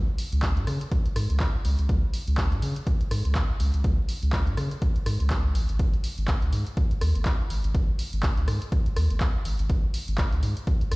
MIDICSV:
0, 0, Header, 1, 3, 480
1, 0, Start_track
1, 0, Tempo, 487805
1, 1862, Time_signature, 4, 2, 24, 8
1, 10784, End_track
2, 0, Start_track
2, 0, Title_t, "Sub bass"
2, 0, Program_c, 0, 38
2, 319, Note_on_c, 0, 37, 79
2, 404, Note_off_c, 0, 37, 0
2, 421, Note_on_c, 0, 37, 82
2, 558, Note_on_c, 0, 44, 100
2, 573, Note_off_c, 0, 37, 0
2, 643, Note_off_c, 0, 44, 0
2, 661, Note_on_c, 0, 49, 84
2, 775, Note_off_c, 0, 49, 0
2, 1141, Note_on_c, 0, 44, 81
2, 1255, Note_off_c, 0, 44, 0
2, 1279, Note_on_c, 0, 37, 81
2, 1364, Note_off_c, 0, 37, 0
2, 1621, Note_on_c, 0, 37, 77
2, 1735, Note_off_c, 0, 37, 0
2, 1759, Note_on_c, 0, 37, 97
2, 1843, Note_off_c, 0, 37, 0
2, 1861, Note_on_c, 0, 37, 97
2, 1975, Note_off_c, 0, 37, 0
2, 2239, Note_on_c, 0, 37, 81
2, 2323, Note_off_c, 0, 37, 0
2, 2341, Note_on_c, 0, 37, 82
2, 2479, Note_on_c, 0, 44, 99
2, 2493, Note_off_c, 0, 37, 0
2, 2563, Note_off_c, 0, 44, 0
2, 2581, Note_on_c, 0, 49, 81
2, 2695, Note_off_c, 0, 49, 0
2, 3061, Note_on_c, 0, 44, 83
2, 3175, Note_off_c, 0, 44, 0
2, 3199, Note_on_c, 0, 37, 78
2, 3283, Note_off_c, 0, 37, 0
2, 3541, Note_on_c, 0, 37, 82
2, 3655, Note_off_c, 0, 37, 0
2, 3679, Note_on_c, 0, 37, 104
2, 3764, Note_off_c, 0, 37, 0
2, 3781, Note_on_c, 0, 37, 101
2, 3895, Note_off_c, 0, 37, 0
2, 4159, Note_on_c, 0, 37, 83
2, 4243, Note_off_c, 0, 37, 0
2, 4261, Note_on_c, 0, 37, 84
2, 4399, Note_on_c, 0, 44, 100
2, 4413, Note_off_c, 0, 37, 0
2, 4483, Note_off_c, 0, 44, 0
2, 4501, Note_on_c, 0, 49, 89
2, 4615, Note_off_c, 0, 49, 0
2, 4981, Note_on_c, 0, 44, 85
2, 5095, Note_off_c, 0, 44, 0
2, 5119, Note_on_c, 0, 37, 84
2, 5461, Note_on_c, 0, 32, 77
2, 5476, Note_off_c, 0, 37, 0
2, 5576, Note_off_c, 0, 32, 0
2, 5599, Note_on_c, 0, 32, 102
2, 5684, Note_off_c, 0, 32, 0
2, 5701, Note_on_c, 0, 32, 100
2, 5815, Note_off_c, 0, 32, 0
2, 6079, Note_on_c, 0, 32, 82
2, 6164, Note_off_c, 0, 32, 0
2, 6181, Note_on_c, 0, 32, 79
2, 6319, Note_on_c, 0, 39, 93
2, 6334, Note_off_c, 0, 32, 0
2, 6404, Note_off_c, 0, 39, 0
2, 6422, Note_on_c, 0, 44, 85
2, 6536, Note_off_c, 0, 44, 0
2, 6902, Note_on_c, 0, 39, 86
2, 7016, Note_off_c, 0, 39, 0
2, 7039, Note_on_c, 0, 32, 83
2, 7124, Note_off_c, 0, 32, 0
2, 7381, Note_on_c, 0, 32, 75
2, 7496, Note_off_c, 0, 32, 0
2, 7519, Note_on_c, 0, 32, 100
2, 7604, Note_off_c, 0, 32, 0
2, 7621, Note_on_c, 0, 32, 101
2, 7735, Note_off_c, 0, 32, 0
2, 7999, Note_on_c, 0, 32, 80
2, 8084, Note_off_c, 0, 32, 0
2, 8101, Note_on_c, 0, 32, 84
2, 8239, Note_on_c, 0, 39, 97
2, 8254, Note_off_c, 0, 32, 0
2, 8324, Note_off_c, 0, 39, 0
2, 8341, Note_on_c, 0, 44, 87
2, 8456, Note_off_c, 0, 44, 0
2, 8821, Note_on_c, 0, 39, 84
2, 8936, Note_off_c, 0, 39, 0
2, 8959, Note_on_c, 0, 32, 81
2, 9044, Note_off_c, 0, 32, 0
2, 9301, Note_on_c, 0, 32, 77
2, 9415, Note_off_c, 0, 32, 0
2, 9439, Note_on_c, 0, 32, 102
2, 9524, Note_off_c, 0, 32, 0
2, 9541, Note_on_c, 0, 32, 97
2, 9655, Note_off_c, 0, 32, 0
2, 9919, Note_on_c, 0, 32, 82
2, 10004, Note_off_c, 0, 32, 0
2, 10021, Note_on_c, 0, 32, 82
2, 10159, Note_on_c, 0, 39, 102
2, 10174, Note_off_c, 0, 32, 0
2, 10244, Note_off_c, 0, 39, 0
2, 10261, Note_on_c, 0, 44, 86
2, 10375, Note_off_c, 0, 44, 0
2, 10741, Note_on_c, 0, 40, 83
2, 10784, Note_off_c, 0, 40, 0
2, 10784, End_track
3, 0, Start_track
3, 0, Title_t, "Drums"
3, 181, Note_on_c, 9, 46, 101
3, 279, Note_off_c, 9, 46, 0
3, 319, Note_on_c, 9, 42, 53
3, 417, Note_on_c, 9, 39, 123
3, 418, Note_off_c, 9, 42, 0
3, 421, Note_on_c, 9, 36, 114
3, 421, Note_on_c, 9, 42, 68
3, 515, Note_off_c, 9, 39, 0
3, 519, Note_off_c, 9, 36, 0
3, 520, Note_off_c, 9, 42, 0
3, 559, Note_on_c, 9, 42, 36
3, 658, Note_off_c, 9, 42, 0
3, 661, Note_on_c, 9, 37, 72
3, 661, Note_on_c, 9, 46, 87
3, 759, Note_off_c, 9, 37, 0
3, 759, Note_off_c, 9, 46, 0
3, 799, Note_on_c, 9, 42, 53
3, 897, Note_off_c, 9, 42, 0
3, 901, Note_on_c, 9, 36, 118
3, 901, Note_on_c, 9, 42, 64
3, 999, Note_off_c, 9, 36, 0
3, 999, Note_off_c, 9, 42, 0
3, 1039, Note_on_c, 9, 42, 36
3, 1137, Note_off_c, 9, 42, 0
3, 1141, Note_on_c, 9, 37, 76
3, 1141, Note_on_c, 9, 46, 104
3, 1239, Note_off_c, 9, 37, 0
3, 1239, Note_off_c, 9, 46, 0
3, 1279, Note_on_c, 9, 42, 53
3, 1376, Note_on_c, 9, 39, 120
3, 1377, Note_off_c, 9, 42, 0
3, 1381, Note_on_c, 9, 36, 115
3, 1381, Note_on_c, 9, 42, 66
3, 1475, Note_off_c, 9, 39, 0
3, 1479, Note_off_c, 9, 36, 0
3, 1479, Note_off_c, 9, 42, 0
3, 1621, Note_on_c, 9, 46, 93
3, 1719, Note_off_c, 9, 46, 0
3, 1759, Note_on_c, 9, 42, 49
3, 1857, Note_off_c, 9, 42, 0
3, 1861, Note_on_c, 9, 36, 119
3, 1861, Note_on_c, 9, 42, 62
3, 1959, Note_off_c, 9, 36, 0
3, 1959, Note_off_c, 9, 42, 0
3, 2101, Note_on_c, 9, 46, 109
3, 2200, Note_off_c, 9, 46, 0
3, 2239, Note_on_c, 9, 42, 53
3, 2337, Note_on_c, 9, 39, 125
3, 2338, Note_off_c, 9, 42, 0
3, 2341, Note_on_c, 9, 36, 124
3, 2341, Note_on_c, 9, 42, 65
3, 2435, Note_off_c, 9, 39, 0
3, 2439, Note_off_c, 9, 36, 0
3, 2440, Note_off_c, 9, 42, 0
3, 2479, Note_on_c, 9, 42, 33
3, 2577, Note_off_c, 9, 42, 0
3, 2581, Note_on_c, 9, 46, 89
3, 2680, Note_off_c, 9, 46, 0
3, 2719, Note_on_c, 9, 42, 52
3, 2817, Note_off_c, 9, 42, 0
3, 2821, Note_on_c, 9, 36, 124
3, 2821, Note_on_c, 9, 42, 65
3, 2919, Note_off_c, 9, 36, 0
3, 2920, Note_off_c, 9, 42, 0
3, 2959, Note_on_c, 9, 42, 36
3, 3058, Note_off_c, 9, 42, 0
3, 3062, Note_on_c, 9, 37, 77
3, 3062, Note_on_c, 9, 46, 105
3, 3160, Note_off_c, 9, 37, 0
3, 3160, Note_off_c, 9, 46, 0
3, 3200, Note_on_c, 9, 42, 48
3, 3297, Note_on_c, 9, 39, 126
3, 3298, Note_off_c, 9, 42, 0
3, 3301, Note_on_c, 9, 36, 117
3, 3302, Note_on_c, 9, 42, 63
3, 3395, Note_off_c, 9, 39, 0
3, 3399, Note_off_c, 9, 36, 0
3, 3400, Note_off_c, 9, 42, 0
3, 3542, Note_on_c, 9, 46, 98
3, 3640, Note_off_c, 9, 46, 0
3, 3679, Note_on_c, 9, 42, 52
3, 3778, Note_off_c, 9, 42, 0
3, 3781, Note_on_c, 9, 36, 122
3, 3781, Note_on_c, 9, 42, 62
3, 3880, Note_off_c, 9, 36, 0
3, 3880, Note_off_c, 9, 42, 0
3, 4021, Note_on_c, 9, 46, 101
3, 4119, Note_off_c, 9, 46, 0
3, 4159, Note_on_c, 9, 42, 50
3, 4257, Note_off_c, 9, 42, 0
3, 4257, Note_on_c, 9, 39, 122
3, 4261, Note_on_c, 9, 36, 121
3, 4261, Note_on_c, 9, 42, 64
3, 4355, Note_off_c, 9, 39, 0
3, 4360, Note_off_c, 9, 36, 0
3, 4360, Note_off_c, 9, 42, 0
3, 4399, Note_on_c, 9, 42, 31
3, 4498, Note_off_c, 9, 42, 0
3, 4501, Note_on_c, 9, 37, 84
3, 4501, Note_on_c, 9, 46, 91
3, 4599, Note_off_c, 9, 37, 0
3, 4599, Note_off_c, 9, 46, 0
3, 4639, Note_on_c, 9, 42, 50
3, 4737, Note_off_c, 9, 42, 0
3, 4741, Note_on_c, 9, 36, 126
3, 4741, Note_on_c, 9, 42, 65
3, 4839, Note_off_c, 9, 42, 0
3, 4840, Note_off_c, 9, 36, 0
3, 4879, Note_on_c, 9, 42, 34
3, 4977, Note_off_c, 9, 42, 0
3, 4981, Note_on_c, 9, 37, 81
3, 4981, Note_on_c, 9, 46, 107
3, 5079, Note_off_c, 9, 37, 0
3, 5079, Note_off_c, 9, 46, 0
3, 5119, Note_on_c, 9, 42, 48
3, 5216, Note_on_c, 9, 39, 114
3, 5217, Note_off_c, 9, 42, 0
3, 5221, Note_on_c, 9, 36, 117
3, 5221, Note_on_c, 9, 42, 61
3, 5315, Note_off_c, 9, 39, 0
3, 5320, Note_off_c, 9, 36, 0
3, 5320, Note_off_c, 9, 42, 0
3, 5461, Note_on_c, 9, 46, 99
3, 5560, Note_off_c, 9, 46, 0
3, 5599, Note_on_c, 9, 42, 52
3, 5698, Note_off_c, 9, 42, 0
3, 5701, Note_on_c, 9, 36, 117
3, 5701, Note_on_c, 9, 42, 63
3, 5800, Note_off_c, 9, 36, 0
3, 5800, Note_off_c, 9, 42, 0
3, 5839, Note_on_c, 9, 42, 34
3, 5938, Note_off_c, 9, 42, 0
3, 5941, Note_on_c, 9, 46, 109
3, 6040, Note_off_c, 9, 46, 0
3, 6080, Note_on_c, 9, 42, 50
3, 6177, Note_on_c, 9, 39, 116
3, 6178, Note_off_c, 9, 42, 0
3, 6181, Note_on_c, 9, 36, 121
3, 6181, Note_on_c, 9, 42, 65
3, 6275, Note_off_c, 9, 39, 0
3, 6280, Note_off_c, 9, 36, 0
3, 6280, Note_off_c, 9, 42, 0
3, 6320, Note_on_c, 9, 42, 31
3, 6418, Note_off_c, 9, 42, 0
3, 6421, Note_on_c, 9, 46, 89
3, 6519, Note_off_c, 9, 46, 0
3, 6560, Note_on_c, 9, 42, 47
3, 6658, Note_off_c, 9, 42, 0
3, 6661, Note_on_c, 9, 36, 121
3, 6661, Note_on_c, 9, 42, 57
3, 6760, Note_off_c, 9, 36, 0
3, 6760, Note_off_c, 9, 42, 0
3, 6800, Note_on_c, 9, 42, 34
3, 6898, Note_off_c, 9, 42, 0
3, 6901, Note_on_c, 9, 37, 83
3, 6901, Note_on_c, 9, 46, 102
3, 7000, Note_off_c, 9, 37, 0
3, 7000, Note_off_c, 9, 46, 0
3, 7040, Note_on_c, 9, 42, 48
3, 7137, Note_on_c, 9, 39, 118
3, 7138, Note_off_c, 9, 42, 0
3, 7141, Note_on_c, 9, 36, 111
3, 7142, Note_on_c, 9, 42, 61
3, 7235, Note_off_c, 9, 39, 0
3, 7240, Note_off_c, 9, 36, 0
3, 7240, Note_off_c, 9, 42, 0
3, 7382, Note_on_c, 9, 46, 93
3, 7480, Note_off_c, 9, 46, 0
3, 7520, Note_on_c, 9, 42, 50
3, 7618, Note_off_c, 9, 42, 0
3, 7621, Note_on_c, 9, 36, 117
3, 7622, Note_on_c, 9, 42, 60
3, 7720, Note_off_c, 9, 36, 0
3, 7720, Note_off_c, 9, 42, 0
3, 7861, Note_on_c, 9, 46, 105
3, 7960, Note_off_c, 9, 46, 0
3, 7999, Note_on_c, 9, 42, 50
3, 8097, Note_on_c, 9, 39, 113
3, 8098, Note_off_c, 9, 42, 0
3, 8101, Note_on_c, 9, 36, 122
3, 8101, Note_on_c, 9, 42, 66
3, 8195, Note_off_c, 9, 39, 0
3, 8199, Note_off_c, 9, 36, 0
3, 8200, Note_off_c, 9, 42, 0
3, 8240, Note_on_c, 9, 42, 32
3, 8338, Note_off_c, 9, 42, 0
3, 8342, Note_on_c, 9, 37, 83
3, 8342, Note_on_c, 9, 46, 89
3, 8440, Note_off_c, 9, 37, 0
3, 8440, Note_off_c, 9, 46, 0
3, 8480, Note_on_c, 9, 42, 51
3, 8578, Note_off_c, 9, 42, 0
3, 8581, Note_on_c, 9, 36, 115
3, 8581, Note_on_c, 9, 42, 57
3, 8679, Note_off_c, 9, 36, 0
3, 8679, Note_off_c, 9, 42, 0
3, 8719, Note_on_c, 9, 42, 34
3, 8818, Note_off_c, 9, 42, 0
3, 8821, Note_on_c, 9, 37, 85
3, 8821, Note_on_c, 9, 46, 99
3, 8920, Note_off_c, 9, 37, 0
3, 8920, Note_off_c, 9, 46, 0
3, 8959, Note_on_c, 9, 42, 47
3, 9057, Note_off_c, 9, 42, 0
3, 9057, Note_on_c, 9, 39, 112
3, 9061, Note_on_c, 9, 36, 113
3, 9061, Note_on_c, 9, 42, 60
3, 9155, Note_off_c, 9, 39, 0
3, 9159, Note_off_c, 9, 36, 0
3, 9160, Note_off_c, 9, 42, 0
3, 9301, Note_on_c, 9, 46, 97
3, 9399, Note_off_c, 9, 46, 0
3, 9439, Note_on_c, 9, 42, 47
3, 9537, Note_off_c, 9, 42, 0
3, 9541, Note_on_c, 9, 36, 106
3, 9541, Note_on_c, 9, 42, 63
3, 9639, Note_off_c, 9, 36, 0
3, 9639, Note_off_c, 9, 42, 0
3, 9781, Note_on_c, 9, 46, 102
3, 9879, Note_off_c, 9, 46, 0
3, 9919, Note_on_c, 9, 42, 52
3, 10016, Note_on_c, 9, 39, 110
3, 10017, Note_off_c, 9, 42, 0
3, 10021, Note_on_c, 9, 36, 112
3, 10021, Note_on_c, 9, 42, 65
3, 10114, Note_off_c, 9, 39, 0
3, 10119, Note_off_c, 9, 36, 0
3, 10119, Note_off_c, 9, 42, 0
3, 10159, Note_on_c, 9, 42, 35
3, 10257, Note_off_c, 9, 42, 0
3, 10261, Note_on_c, 9, 46, 84
3, 10359, Note_off_c, 9, 46, 0
3, 10399, Note_on_c, 9, 42, 49
3, 10497, Note_off_c, 9, 42, 0
3, 10501, Note_on_c, 9, 36, 111
3, 10501, Note_on_c, 9, 42, 63
3, 10599, Note_off_c, 9, 36, 0
3, 10599, Note_off_c, 9, 42, 0
3, 10639, Note_on_c, 9, 42, 36
3, 10737, Note_off_c, 9, 42, 0
3, 10741, Note_on_c, 9, 37, 79
3, 10741, Note_on_c, 9, 46, 100
3, 10784, Note_off_c, 9, 37, 0
3, 10784, Note_off_c, 9, 46, 0
3, 10784, End_track
0, 0, End_of_file